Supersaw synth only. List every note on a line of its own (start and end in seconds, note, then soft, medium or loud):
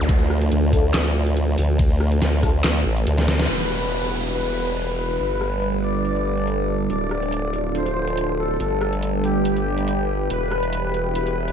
3.49 4.27 B4 loud
4.34 4.90 B4 medium
4.98 5.76 B4 loud
5.83 6.82 D5 loud
6.90 7.67 D5 loud
7.75 8.31 C5 medium
8.39 9.16 A4 loud
9.24 10.22 G4 loud
10.30 11.07 B4 loud
11.15 11.52 B4 medium